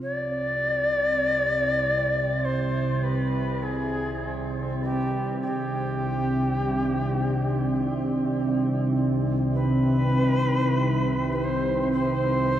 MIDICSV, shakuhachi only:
0, 0, Header, 1, 2, 480
1, 0, Start_track
1, 0, Key_signature, -3, "minor"
1, 0, Tempo, 1195219
1, 5, Time_signature, 4, 2, 24, 8
1, 1925, Tempo, 1181102
1, 5096, End_track
2, 0, Start_track
2, 0, Title_t, "Shakuhachi"
2, 0, Program_c, 0, 77
2, 9, Note_on_c, 0, 74, 115
2, 983, Note_on_c, 0, 72, 89
2, 989, Note_off_c, 0, 74, 0
2, 1219, Note_on_c, 0, 71, 76
2, 1225, Note_off_c, 0, 72, 0
2, 1458, Note_on_c, 0, 68, 85
2, 1464, Note_off_c, 0, 71, 0
2, 1823, Note_off_c, 0, 68, 0
2, 1941, Note_on_c, 0, 67, 83
2, 2158, Note_off_c, 0, 67, 0
2, 2182, Note_on_c, 0, 67, 87
2, 3598, Note_off_c, 0, 67, 0
2, 3854, Note_on_c, 0, 71, 113
2, 4580, Note_on_c, 0, 72, 97
2, 4586, Note_off_c, 0, 71, 0
2, 4592, Note_on_c, 0, 71, 81
2, 4598, Note_off_c, 0, 72, 0
2, 4627, Note_on_c, 0, 72, 90
2, 4633, Note_off_c, 0, 71, 0
2, 4807, Note_off_c, 0, 72, 0
2, 4821, Note_on_c, 0, 72, 112
2, 5096, Note_off_c, 0, 72, 0
2, 5096, End_track
0, 0, End_of_file